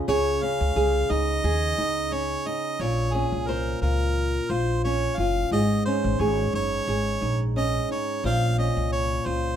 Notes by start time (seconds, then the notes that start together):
Already playing: C#4 F4
0.08 C#2 C#3 G#4 C#5
0.43 C#4 F5
0.61 C#2
0.76 C2 G#4
1.10 C#2 D#4 D#5
1.44 D#2 G#4
1.78 C#2 D#4
2.12 C#4 C#5
2.46 D#4 D#5
2.80 A#1 A#2 C#5
3.14 C#4 G#4
3.32 C2
3.47 A#4 C5
3.81 C#2 F4 A#4
4.50 A#1 F4 C5
4.84 C#4 C#5
5.18 F#1 F4 F5
5.51 G#1 G#2 G#4 D#5
5.85 C#4 C5
6.04 G#1
6.20 G#1 G#4 C#5
6.54 F#1 D#4 C#5
6.88 G#1 G#4
7.22 A#1 D#4
7.56 C#4 D#5
7.90 D#4 C#5
8.24 A#1 A#2 C5 F5
8.58 C#4 D#5
8.77 C2
8.92 C#5
9.26 C#2 F4 C5